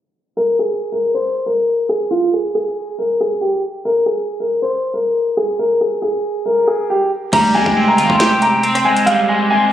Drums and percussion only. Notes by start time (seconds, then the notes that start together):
7.33 kick, closed hi-hat, crash
7.66 kick
7.98 closed hi-hat
8.10 kick
8.20 snare, closed hi-hat
8.42 closed hi-hat
8.63 closed hi-hat
8.75 cross-stick, closed hi-hat
8.97 closed hi-hat
9.07 closed hi-hat